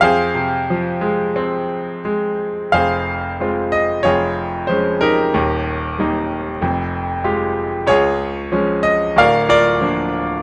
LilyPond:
<<
  \new Staff \with { instrumentName = "Grand piano" } { \time 4/4 \key f \minor \tempo 4 = 93 << { f''2. r4 | f''4. ees''8 des''4 c''8 bes'8~ | bes'4. r2 r8 | des''4. ees''8 f''8 d''4. | } \\ { <aes' c''>2. r4 | <aes' c''>2 <f' aes'>4. <ees' g'>8~ | <ees' g'>4. r2 r8 | <f' aes'>2 <bes' d''>8 <f' bes'>4. | } >> }
  \new Staff \with { instrumentName = "Grand piano" } { \clef bass \time 4/4 \key f \minor f,8 c8 f8 aes8 c'4 aes4 | <f,, f,>4 <aes c' f'>4 <f,, f,>4 <f aes des'>4 | <ees,, ees,>4 <g bes ees'>4 <f,, f,>4 <aes f' g'>4 | des,4 <f aes des'>4 <d,, d,>4 <f bes d'>4 | }
>>